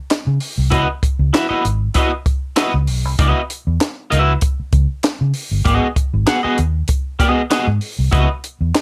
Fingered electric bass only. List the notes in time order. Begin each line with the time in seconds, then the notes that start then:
0.27 C#3
0.58 C2
0.72 C#2
1.19 C#2
1.50 muted fingered electric bass stroke
1.65 G#1
2.74 C#2
2.88 B1
3.05 C2
3.19 C#2
3.67 E2
4.12 C#2
4.60 muted fingered electric bass stroke
4.73 C#2
5.21 C#3
5.51 G1
5.66 G#1
6.13 G#1
6.44 muted fingered electric bass stroke
6.59 D#2
7.67 G#2
7.99 C2
8.13 C#2
8.61 E2